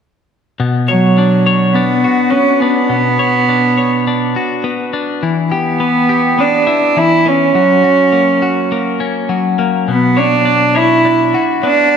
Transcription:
0.60 B2
0.88 F#3 C#5
1.18 D4
1.47 C#5
1.73 B3 D4
2.04 F#4
2.30 B3 C#4
2.60 B3 D4
2.89 B2
3.19 C#5
3.49 D4
3.77 C#5
4.07 D4
4.36 F#4
4.64 B3
4.93 D4
5.23 E3
5.52 B3 G4
5.80 B3
6.09 G4
6.39 B3 D4
6.67 E4
6.97 E3 E4
7.26 B3 C#4
7.55 F#3
7.84 F#4
8.12 A#3
8.42 F#4
8.72 A#3
9.00 C#4
9.29 F#3
9.59 A#3
9.88 B2 B3
10.17 D4 C#5
10.45 D4
10.75 E4 C#5
11.05 D4
11.34 F#4
11.63 B3 D4

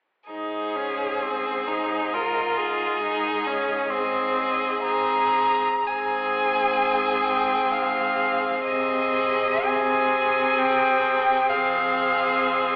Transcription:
0.29 G#2 D#4 G#4 C5
0.76 C#4
1.22 C4
1.68 D#4
2.14 F4 A#4 D#5
2.57 G#4
3.03 D#4
3.46 C#4
3.90 C4 G#4 D#5
4.82 C4 G#4 A#5
5.86 G#2 C4 G#4 G#5
7.25 G5
7.72 F5
8.64 C3 C4 G#4 D#5
9.65 C4 G#4 G#5
10.58 G5
11.49 F2 C4 G#4 F5

